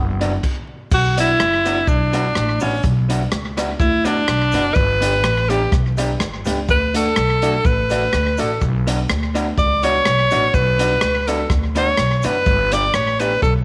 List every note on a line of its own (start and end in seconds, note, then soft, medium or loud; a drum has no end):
0.00 0.36 F#1 medium
0.00 0.44 B3 loud
0.20 0.32 B3 medium
0.20 0.32 D4 medium
0.20 0.32 F#4 medium
0.20 0.32 F#4 loud
0.20 0.32 B4 medium
0.20 0.33 D5 loud
0.20 closed hi-hat medium
0.43 kick medium
0.43 crash medium
0.91 1.32 B1 loud
0.91 1.17 F#4 loud
0.91 kick loud
0.91 crash medium
0.91 cabasa medium
1.16 1.29 B3 medium
1.16 1.28 D4 medium
1.16 1.29 D4 medium
1.16 1.90 E4 loud
1.16 1.28 F#4 medium
1.16 1.29 F#4 medium
1.16 1.29 B4 medium
1.16 1.29 D5 loud
1.16 closed hi-hat loud
1.16 cabasa medium
1.40 1.81 F#1 loud
1.40 cross-stick loud
1.40 cabasa medium
1.64 1.77 B3 loud
1.64 1.76 D4 medium
1.64 1.77 D4 loud
1.64 1.77 F#4 medium
1.64 1.77 F#4 loud
1.64 1.77 B4 medium
1.64 1.77 D5 loud
1.64 closed hi-hat medium
1.64 cabasa medium
1.87 2.29 B1 medium
1.87 2.63 D4 medium
1.87 kick loud
1.87 cabasa medium
2.12 2.25 B3 loud
2.12 2.24 D4 medium
2.12 2.25 D4 medium
2.12 2.24 F#4 medium
2.12 2.25 F#4 loud
2.12 2.25 B4 medium
2.12 2.25 D5 loud
2.12 closed hi-hat medium
2.12 cabasa medium
2.35 2.58 A1 loud
2.35 2.41 B4 soft
2.35 2.41 D5 soft
2.35 cross-stick medium
2.35 cabasa medium
2.60 2.81 A1 medium
2.60 2.73 B3 medium
2.60 2.84 C#4 medium
2.60 2.73 D4 loud
2.60 2.73 D4 medium
2.60 2.73 F#4 medium
2.60 2.73 B4 medium
2.60 2.73 D5 loud
2.60 open hi-hat soft
2.60 cabasa medium
2.83 3.25 B1 loud
2.83 kick loud
2.83 hi-hat pedal medium
2.83 cabasa medium
3.09 3.20 B3 medium
3.09 3.21 D4 medium
3.09 3.21 F#4 medium
3.09 3.21 B4 medium
3.09 3.21 D5 medium
3.09 closed hi-hat loud
3.09 cabasa medium
3.32 3.73 C#2 loud
3.32 cross-stick loud
3.32 cabasa medium
3.57 3.68 B3 medium
3.57 3.69 D4 medium
3.57 3.69 F#4 medium
3.57 3.69 F#4 loud
3.57 3.69 B4 medium
3.57 3.69 D5 loud
3.57 cross-stick medium
3.57 closed hi-hat medium
3.57 cabasa medium
3.79 4.21 D2 loud
3.79 4.07 E4 medium
3.79 kick loud
3.79 cabasa medium
4.05 4.16 B3 loud
4.05 4.16 D4 medium
4.05 4.17 D4 loud
4.05 4.76 D4 loud
4.05 4.17 F#4 medium
4.05 4.17 F#4 loud
4.05 4.17 B4 medium
4.05 4.17 D5 loud
4.05 closed hi-hat medium
4.05 cabasa medium
4.28 4.50 B1 loud
4.28 4.33 B4 soft
4.28 4.33 D5 soft
4.28 cross-stick loud
4.28 cabasa medium
4.52 4.73 F#1 medium
4.52 4.65 B3 medium
4.52 4.65 D4 loud
4.52 4.65 D4 medium
4.52 4.65 F#4 medium
4.52 4.65 B4 medium
4.52 4.65 D5 medium
4.52 closed hi-hat medium
4.52 cabasa loud
4.74 5.24 G1 loud
4.74 5.51 B4 loud
4.74 kick loud
4.74 cabasa medium
5.01 5.13 B3 medium
5.01 5.13 D4 medium
5.01 5.13 G4 medium
5.01 5.13 B4 medium
5.01 5.14 D5 medium
5.01 closed hi-hat loud
5.01 cabasa medium
5.23 5.65 A1 loud
5.23 cross-stick loud
5.23 cabasa medium
5.49 5.61 B3 medium
5.49 5.61 D4 medium
5.49 5.72 G4 medium
5.49 5.61 G4 medium
5.49 5.61 G4 loud
5.49 5.62 B4 medium
5.49 5.62 D5 loud
5.49 closed hi-hat medium
5.49 cabasa medium
5.72 6.13 B1 loud
5.72 kick loud
5.72 cross-stick medium
5.72 cabasa medium
5.97 6.10 B3 medium
5.97 6.09 D4 medium
5.97 6.10 D4 medium
5.97 6.09 G4 medium
5.97 6.10 G4 medium
5.97 6.10 B4 medium
5.97 6.10 D5 loud
5.97 closed hi-hat medium
5.97 cabasa medium
6.20 6.42 G1 loud
6.20 6.26 B4 soft
6.20 6.26 D5 soft
6.20 cross-stick loud
6.20 cabasa medium
6.45 6.65 C#2 medium
6.45 6.57 B3 medium
6.45 6.57 D4 medium
6.45 6.58 D4 medium
6.45 6.57 G4 medium
6.45 6.58 G4 medium
6.45 6.58 B4 medium
6.45 6.58 D5 loud
6.45 closed hi-hat medium
6.45 cabasa medium
6.68 7.10 D2 loud
6.68 6.94 B4 loud
6.68 kick loud
6.68 cabasa medium
6.93 7.06 A3 medium
6.93 7.05 D4 medium
6.93 7.06 D4 medium
6.93 7.06 F#4 medium
6.93 7.06 A4 medium
6.93 7.67 A4 loud
6.93 7.06 D5 loud
6.93 closed hi-hat loud
6.93 cabasa medium
7.16 7.58 B1 loud
7.16 cross-stick loud
7.16 cabasa medium
7.41 7.54 A3 medium
7.41 7.53 D4 medium
7.41 7.54 D4 medium
7.41 7.54 F#4 medium
7.41 7.54 F#4 loud
7.41 7.54 A4 medium
7.41 7.54 D5 loud
7.41 closed hi-hat medium
7.41 cabasa medium
7.65 8.06 A1 loud
7.65 8.41 B4 loud
7.65 kick loud
7.65 cabasa medium
7.90 8.02 A3 medium
7.90 8.02 D4 loud
7.90 8.02 D4 medium
7.90 8.02 F#4 medium
7.90 8.02 F#4 loud
7.90 8.02 A4 medium
7.90 8.03 D5 loud
7.90 closed hi-hat medium
7.90 cabasa medium
8.13 8.35 D2 loud
8.13 8.18 A4 soft
8.13 8.19 D5 soft
8.13 cross-stick medium
8.13 cabasa medium
8.37 8.58 A1 medium
8.37 8.50 A3 medium
8.37 8.50 D4 medium
8.37 8.50 F#4 medium
8.37 8.50 A4 medium
8.37 8.62 A4 medium
8.37 8.51 D5 loud
8.37 closed hi-hat medium
8.37 cabasa medium
8.61 9.02 B1 loud
8.61 kick loud
8.61 cabasa medium
8.86 8.98 B3 medium
8.86 8.98 D4 medium
8.86 8.98 F#4 medium
8.86 8.98 B4 medium
8.86 8.99 D5 medium
8.86 closed hi-hat loud
8.86 cabasa medium
9.09 9.51 D2 loud
9.09 cross-stick loud
9.09 cabasa medium
9.34 9.46 B3 loud
9.34 9.46 D4 loud
9.34 9.46 F#4 medium
9.34 9.46 F#4 loud
9.34 9.46 B4 medium
9.34 9.47 D5 loud
9.34 closed hi-hat medium
9.34 cabasa medium
9.58 9.99 C#2 loud
9.58 9.85 D5 loud
9.58 kick loud
9.58 cabasa medium
9.83 9.94 B3 loud
9.83 9.95 D4 medium
9.83 9.94 D4 loud
9.83 9.95 F#4 loud
9.83 9.95 B4 medium
9.83 10.55 C#5 loud
9.83 9.95 D5 loud
9.83 closed hi-hat medium
9.83 cabasa medium
10.05 10.28 B1 loud
10.05 10.11 B4 soft
10.05 10.11 D5 soft
10.05 cross-stick loud
10.05 cabasa medium
10.31 10.51 A1 medium
10.31 10.42 B3 medium
10.31 10.43 D4 medium
10.31 10.43 F#4 medium
10.31 10.43 B4 medium
10.31 10.43 D5 loud
10.31 closed hi-hat medium
10.31 cabasa medium
10.54 10.95 B1 loud
10.54 11.29 B4 loud
10.54 kick loud
10.54 cabasa medium
10.79 10.90 B3 medium
10.79 10.91 D4 medium
10.79 10.91 F#4 medium
10.79 10.91 F#4 loud
10.79 10.91 B4 medium
10.79 10.92 D5 loud
10.79 closed hi-hat loud
10.79 cabasa medium
11.01 11.43 C#2 medium
11.01 cross-stick loud
11.01 cabasa medium
11.27 11.39 B3 medium
11.27 11.39 D4 medium
11.27 11.39 F#4 medium
11.27 11.39 F#4 loud
11.27 11.50 A4 medium
11.27 11.39 B4 medium
11.27 11.40 D5 medium
11.27 closed hi-hat medium
11.27 cabasa medium
11.50 11.91 D2 loud
11.50 kick loud
11.50 cross-stick medium
11.50 cabasa medium
11.75 11.87 B3 loud
11.75 11.87 D4 medium
11.75 11.87 D4 loud
11.75 11.87 F#4 medium
11.75 11.87 F#4 loud
11.75 11.88 B4 medium
11.75 12.18 C#5 loud
11.75 11.88 D5 loud
11.75 closed hi-hat medium
11.75 cabasa medium
11.97 12.20 B1 loud
11.97 12.04 B4 soft
11.97 12.04 D5 soft
11.97 cross-stick loud
11.97 cabasa medium
12.18 12.27 C#5 medium
12.23 12.44 F#1 medium
12.23 12.35 B3 medium
12.23 12.35 D4 medium
12.23 12.35 F#4 medium
12.23 12.35 B4 medium
12.23 12.74 B4 loud
12.23 12.36 D5 loud
12.23 closed hi-hat medium
12.23 cabasa medium
12.46 12.87 G1 loud
12.46 kick loud
12.46 cabasa medium
12.72 12.83 B3 medium
12.72 12.83 D4 medium
12.72 12.84 G4 medium
12.72 12.84 B4 medium
12.72 12.96 D5 loud
12.72 12.84 D5 loud
12.72 closed hi-hat loud
12.72 cabasa medium
12.94 13.36 A1 medium
12.94 13.21 C#5 medium
12.94 cross-stick loud
12.94 cabasa medium
13.20 13.31 B3 medium
13.20 13.31 D4 medium
13.20 13.32 G4 medium
13.20 13.42 B4 medium
13.20 13.32 B4 medium
13.20 13.32 D5 loud
13.20 closed hi-hat medium
13.20 cabasa medium
13.42 13.64 B1 loud
13.42 13.54 A4 medium
13.42 kick loud
13.42 cabasa medium